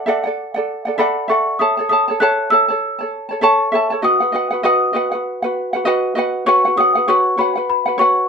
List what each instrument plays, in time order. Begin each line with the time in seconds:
Already playing: celesta D6
0.06 ukulele A4 D5 E5 F#5
0.24 ukulele A4 D5 F#5
0.54 ukulele A4 D5 F#5
0.85 ukulele A4 D5 F#5
0.98 ukulele A4 D5 E5 F#5, celesta B5
1.28 ukulele A4 D5 E5 F#5, celesta C#6
1.59 ukulele A4 C#5 E5 A5, celesta D#6
1.77 ukulele A4 C#5 A5
1.89 ukulele A4 C#5 E5 A5, celesta D#6
2.08 ukulele A4 C#5 A5
2.20 ukulele A4 C#5 E5 A5, celesta F#6
2.50 ukulele A4 C#5 E5 A5, celesta E6
2.68 ukulele A4 C#5 A5
2.99 ukulele A4 C#5 A5
3.29 ukulele A4 C#5 A5
3.41 ukulele A4 C#5 E5 A5, celesta C#6
3.72 ukulele A4 C#5 E5 A5
3.90 ukulele A4 C#5 A5
4.02 ukulele F#4 B4 D#5 F#5, celesta D#6
4.20 ukulele F#4 B4 F#5
4.32 ukulele F#4 B4 D#5 F#5
4.51 ukulele F#4 B4 F#5
4.63 ukulele F#4 B4 D#5 F#5, celesta D#6
4.93 ukulele F#4 B4 D#5 F#5
5.12 ukulele F#4 B4 F#5
5.42 ukulele F#4 B4 F#5
5.73 ukulele F#4 B4 F#5
5.85 ukulele F#4 B4 D#5 F#5
6.15 ukulele F#4 B4 D#5 F#5
6.46 ukulele F#4 B4 C#5 F#5, celesta C#6
6.65 ukulele F#4 B4 F#5
6.77 ukulele F#4 B4 C#5 F#5, celesta D#6
6.95 ukulele F#4 B4 F#5
7.08 ukulele F#4 B4 C#5 F#5, celesta C#6
7.38 ukulele F#4 B4 C#5 F#5, celesta B5
7.55 ukulele F#4 B4 F#5
7.70 celesta B5
7.86 ukulele F#4 B4 F#5
7.98 ukulele F#4 B4 C#5 F#5, celesta C#6